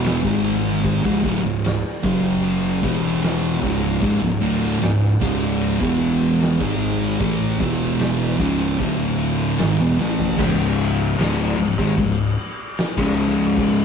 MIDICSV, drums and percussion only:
0, 0, Header, 1, 2, 480
1, 0, Start_track
1, 0, Key_signature, 4, "minor"
1, 0, Tempo, 795756
1, 507, Time_signature, 4, 2, 24, 8
1, 8354, End_track
2, 0, Start_track
2, 0, Title_t, "Drums"
2, 26, Note_on_c, 9, 51, 88
2, 39, Note_on_c, 9, 38, 111
2, 87, Note_off_c, 9, 51, 0
2, 99, Note_off_c, 9, 38, 0
2, 148, Note_on_c, 9, 36, 107
2, 208, Note_off_c, 9, 36, 0
2, 267, Note_on_c, 9, 51, 67
2, 327, Note_off_c, 9, 51, 0
2, 508, Note_on_c, 9, 51, 97
2, 509, Note_on_c, 9, 36, 108
2, 569, Note_off_c, 9, 36, 0
2, 569, Note_off_c, 9, 51, 0
2, 629, Note_on_c, 9, 36, 102
2, 690, Note_off_c, 9, 36, 0
2, 750, Note_on_c, 9, 36, 104
2, 751, Note_on_c, 9, 51, 69
2, 810, Note_off_c, 9, 36, 0
2, 812, Note_off_c, 9, 51, 0
2, 991, Note_on_c, 9, 51, 97
2, 1003, Note_on_c, 9, 38, 117
2, 1051, Note_off_c, 9, 51, 0
2, 1063, Note_off_c, 9, 38, 0
2, 1230, Note_on_c, 9, 36, 100
2, 1234, Note_on_c, 9, 51, 71
2, 1290, Note_off_c, 9, 36, 0
2, 1294, Note_off_c, 9, 51, 0
2, 1471, Note_on_c, 9, 51, 90
2, 1531, Note_off_c, 9, 51, 0
2, 1709, Note_on_c, 9, 36, 99
2, 1712, Note_on_c, 9, 51, 68
2, 1769, Note_off_c, 9, 36, 0
2, 1772, Note_off_c, 9, 51, 0
2, 1945, Note_on_c, 9, 51, 103
2, 1957, Note_on_c, 9, 38, 109
2, 2006, Note_off_c, 9, 51, 0
2, 2018, Note_off_c, 9, 38, 0
2, 2188, Note_on_c, 9, 36, 99
2, 2191, Note_on_c, 9, 51, 71
2, 2249, Note_off_c, 9, 36, 0
2, 2252, Note_off_c, 9, 51, 0
2, 2325, Note_on_c, 9, 38, 33
2, 2385, Note_off_c, 9, 38, 0
2, 2430, Note_on_c, 9, 36, 113
2, 2436, Note_on_c, 9, 51, 101
2, 2490, Note_off_c, 9, 36, 0
2, 2496, Note_off_c, 9, 51, 0
2, 2672, Note_on_c, 9, 51, 73
2, 2732, Note_off_c, 9, 51, 0
2, 2905, Note_on_c, 9, 51, 96
2, 2917, Note_on_c, 9, 38, 110
2, 2966, Note_off_c, 9, 51, 0
2, 2978, Note_off_c, 9, 38, 0
2, 3147, Note_on_c, 9, 36, 100
2, 3149, Note_on_c, 9, 51, 68
2, 3207, Note_off_c, 9, 36, 0
2, 3210, Note_off_c, 9, 51, 0
2, 3386, Note_on_c, 9, 51, 81
2, 3446, Note_off_c, 9, 51, 0
2, 3506, Note_on_c, 9, 36, 103
2, 3567, Note_off_c, 9, 36, 0
2, 3624, Note_on_c, 9, 51, 63
2, 3684, Note_off_c, 9, 51, 0
2, 3864, Note_on_c, 9, 51, 85
2, 3876, Note_on_c, 9, 38, 106
2, 3925, Note_off_c, 9, 51, 0
2, 3937, Note_off_c, 9, 38, 0
2, 3987, Note_on_c, 9, 36, 106
2, 4047, Note_off_c, 9, 36, 0
2, 4107, Note_on_c, 9, 51, 70
2, 4168, Note_off_c, 9, 51, 0
2, 4342, Note_on_c, 9, 51, 89
2, 4345, Note_on_c, 9, 36, 112
2, 4402, Note_off_c, 9, 51, 0
2, 4405, Note_off_c, 9, 36, 0
2, 4583, Note_on_c, 9, 51, 67
2, 4585, Note_on_c, 9, 36, 105
2, 4643, Note_off_c, 9, 51, 0
2, 4645, Note_off_c, 9, 36, 0
2, 4821, Note_on_c, 9, 51, 97
2, 4833, Note_on_c, 9, 38, 118
2, 4882, Note_off_c, 9, 51, 0
2, 4894, Note_off_c, 9, 38, 0
2, 5065, Note_on_c, 9, 36, 99
2, 5066, Note_on_c, 9, 51, 69
2, 5125, Note_off_c, 9, 36, 0
2, 5126, Note_off_c, 9, 51, 0
2, 5299, Note_on_c, 9, 51, 88
2, 5304, Note_on_c, 9, 36, 99
2, 5359, Note_off_c, 9, 51, 0
2, 5365, Note_off_c, 9, 36, 0
2, 5540, Note_on_c, 9, 51, 72
2, 5600, Note_off_c, 9, 51, 0
2, 5780, Note_on_c, 9, 51, 96
2, 5792, Note_on_c, 9, 38, 107
2, 5840, Note_off_c, 9, 51, 0
2, 5852, Note_off_c, 9, 38, 0
2, 6034, Note_on_c, 9, 38, 61
2, 6095, Note_off_c, 9, 38, 0
2, 6146, Note_on_c, 9, 43, 87
2, 6207, Note_off_c, 9, 43, 0
2, 6265, Note_on_c, 9, 49, 127
2, 6265, Note_on_c, 9, 57, 83
2, 6266, Note_on_c, 9, 36, 113
2, 6326, Note_off_c, 9, 36, 0
2, 6326, Note_off_c, 9, 49, 0
2, 6326, Note_off_c, 9, 57, 0
2, 6512, Note_on_c, 9, 57, 64
2, 6572, Note_off_c, 9, 57, 0
2, 6749, Note_on_c, 9, 57, 88
2, 6761, Note_on_c, 9, 38, 114
2, 6809, Note_off_c, 9, 57, 0
2, 6821, Note_off_c, 9, 38, 0
2, 6987, Note_on_c, 9, 57, 64
2, 7048, Note_off_c, 9, 57, 0
2, 7106, Note_on_c, 9, 36, 105
2, 7167, Note_off_c, 9, 36, 0
2, 7223, Note_on_c, 9, 57, 84
2, 7226, Note_on_c, 9, 36, 92
2, 7283, Note_off_c, 9, 57, 0
2, 7286, Note_off_c, 9, 36, 0
2, 7463, Note_on_c, 9, 57, 56
2, 7523, Note_off_c, 9, 57, 0
2, 7702, Note_on_c, 9, 57, 76
2, 7714, Note_on_c, 9, 38, 115
2, 7762, Note_off_c, 9, 57, 0
2, 7775, Note_off_c, 9, 38, 0
2, 7826, Note_on_c, 9, 36, 109
2, 7886, Note_off_c, 9, 36, 0
2, 7947, Note_on_c, 9, 57, 61
2, 8008, Note_off_c, 9, 57, 0
2, 8188, Note_on_c, 9, 36, 113
2, 8189, Note_on_c, 9, 57, 91
2, 8248, Note_off_c, 9, 36, 0
2, 8250, Note_off_c, 9, 57, 0
2, 8354, End_track
0, 0, End_of_file